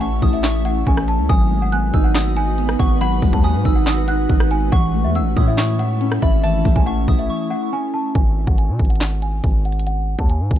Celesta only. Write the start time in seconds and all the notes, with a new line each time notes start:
0.01 F#5
0.34 E5
0.65 F#5
0.88 G#5
1.08 A5
1.30 G#5
1.62 F#5
1.73 G#5
2.04 F#5
2.37 G#5
2.80 F#5
3.01 F#5
3.33 A5
3.44 G#5
3.75 F#5
4.08 F#5
4.51 G#5
4.72 F#5
5.04 E5
5.16 F#5
5.48 E5
5.79 F#5
6.23 E5
6.43 E5
6.76 G#5
6.86 F#5
7.19 E5
7.50 F#5
7.73 G#5
7.94 A5
8.15 G#5
8.47 F#5
8.58 G#5
8.90 F#5
9.22 G#5
9.65 F#5
9.87 F#5
10.19 A5
10.30 G#5